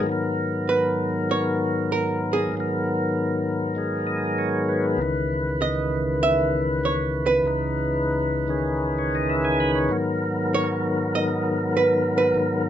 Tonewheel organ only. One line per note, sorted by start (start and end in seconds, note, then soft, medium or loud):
0.01 2.48 G#2 medium
0.01 2.51 D#3 soft
0.07 2.53 F#3 soft
0.07 2.54 B3 soft
0.12 2.55 A#4 medium
2.49 4.97 G#2 medium
2.49 3.74 D#3 soft
2.54 5.00 F#3 soft
2.54 5.01 B3 medium
2.60 5.03 A#4 medium
3.75 4.99 D#3 soft
3.75 4.99 G#3 soft
3.75 5.00 G#4 soft
4.07 4.50 D#5 soft
4.38 4.86 C#5 soft
4.69 5.01 B4 soft
4.97 7.42 C#2 medium
4.97 7.42 C#3 medium
4.97 7.44 E3 medium
5.01 7.46 D#3 medium
5.01 7.46 B4 medium
7.43 9.90 C#2 medium
7.43 8.46 C#3 soft
7.43 9.91 E3 soft
7.47 9.92 D#4 soft
7.47 9.92 B4 medium
8.47 9.90 C#3 soft
8.47 9.88 D#3 soft
8.47 9.91 C#4 soft
8.47 9.92 G#4 medium
8.98 9.17 C#5 soft
9.15 9.36 D#5 soft
9.30 9.59 E5 soft
9.45 9.72 G#5 soft
9.60 9.79 B5 medium
9.75 9.97 C#5 medium
9.88 12.33 G#2 medium
9.88 12.34 D#3 soft
9.88 12.36 F#3 medium
9.88 12.37 B3 medium
9.93 12.37 A#4 medium
12.35 12.69 G#2 medium
12.35 12.69 D#3 medium
12.35 12.69 F#3 medium
12.35 12.69 B3 medium
12.39 12.69 A#4 medium